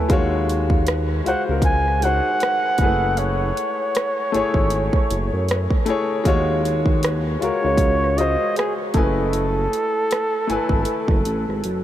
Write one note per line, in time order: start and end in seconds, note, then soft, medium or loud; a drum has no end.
0.00 0.12 A3 medium
0.00 0.11 E4 medium
0.00 0.12 B4 medium
0.00 0.11 C#5 loud
0.00 0.12 G#5 medium
0.09 1.22 D#2 loud
0.09 1.19 G#3 loud
0.09 1.20 F4 medium
0.09 1.21 F#4 medium
0.09 kick loud
0.09 closed hi-hat medium
0.13 1.22 C#5 loud
0.49 closed hi-hat medium
0.70 kick medium
0.87 cross-stick loud
0.87 closed hi-hat medium
1.24 1.35 C#2 soft
1.24 1.45 G#3 medium
1.24 1.47 F4 medium
1.24 1.47 F#4 medium
1.24 1.43 F#5 medium
1.24 closed hi-hat medium
1.28 1.48 C5 medium
1.46 2.21 C#2 medium
1.46 1.99 G#3 medium
1.46 2.00 F4 medium
1.46 2.00 F#4 medium
1.51 2.01 A#4 medium
1.62 2.05 G#5 loud
1.62 kick loud
1.62 closed hi-hat medium
1.88 cross-stick soft
2.01 2.77 G#3 medium
2.01 2.79 D#4 medium
2.01 2.80 F#4 medium
2.01 3.20 F#5 loud
2.01 closed hi-hat medium
2.05 2.80 C5 medium
2.40 cross-stick loud
2.40 closed hi-hat medium
2.78 3.52 F#1 medium
2.78 2.86 G#3 medium
2.78 4.27 E4 medium
2.78 4.27 G#4 medium
2.78 kick medium
2.78 cross-stick soft
2.78 closed hi-hat medium
2.83 4.29 A3 medium
2.83 4.28 B4 medium
3.17 5.87 C#5 medium
3.17 closed hi-hat medium
3.57 closed hi-hat medium
3.95 cross-stick loud
3.95 closed hi-hat medium
4.32 4.43 G#1 soft
4.32 5.79 A3 medium
4.32 5.80 E4 medium
4.32 5.81 G#4 medium
4.32 closed hi-hat medium
4.36 5.82 C#5 loud
4.54 4.90 G#1 medium
4.54 kick medium
4.70 closed hi-hat medium
4.93 kick medium
4.93 cross-stick soft
5.11 5.31 F#1 loud
5.11 closed hi-hat medium
5.33 5.68 F#2 medium
5.49 cross-stick loud
5.49 closed hi-hat medium
5.71 kick medium
5.86 6.23 A3 medium
5.86 6.24 E4 medium
5.86 6.24 G#4 medium
5.86 cross-stick soft
5.86 closed hi-hat medium
5.90 6.25 C#5 loud
6.24 7.37 D#2 medium
6.24 7.35 G#3 loud
6.24 7.36 F4 medium
6.24 7.36 F#4 medium
6.24 kick loud
6.24 closed hi-hat medium
6.28 7.37 C#5 loud
6.65 closed hi-hat medium
6.86 kick medium
7.03 cross-stick loud
7.03 closed hi-hat medium
7.39 7.51 C#2 soft
7.39 7.60 G#3 medium
7.39 7.62 F4 medium
7.39 7.63 F#4 medium
7.39 8.20 C#5 loud
7.39 closed hi-hat medium
7.44 7.63 A#4 medium
7.62 8.36 C#2 medium
7.62 8.14 G#3 medium
7.62 8.15 F4 medium
7.62 8.16 F#4 medium
7.66 8.16 C#5 medium
7.78 kick medium
7.78 closed hi-hat medium
8.04 cross-stick soft
8.16 8.94 G#3 medium
8.16 8.94 F4 medium
8.16 8.95 F#4 medium
8.16 8.56 D#5 loud
8.16 closed hi-hat medium
8.21 8.96 C5 medium
8.56 8.74 G#4 medium
8.56 cross-stick loud
8.56 closed hi-hat medium
8.94 9.68 F#1 loud
8.94 10.41 A3 medium
8.94 10.42 E4 medium
8.94 11.60 A4 medium
8.94 10.43 G#5 medium
8.94 kick medium
8.94 cross-stick soft
8.94 closed hi-hat medium
8.98 10.43 B4 medium
9.33 closed hi-hat medium
9.73 closed hi-hat medium
10.11 cross-stick loud
10.11 closed hi-hat medium
10.47 10.58 G#1 soft
10.47 11.84 A3 medium
10.47 11.84 E4 medium
10.47 11.84 G#5 medium
10.47 closed hi-hat medium
10.52 11.84 B4 loud
10.69 10.85 G#1 medium
10.69 kick medium
10.85 closed hi-hat medium
11.08 11.24 F#1 medium
11.08 kick medium
11.08 cross-stick soft
11.25 11.46 A1 medium
11.25 closed hi-hat medium
11.49 11.63 G#1 medium
11.49 cross-stick soft
11.64 11.84 F#1 medium
11.64 closed hi-hat medium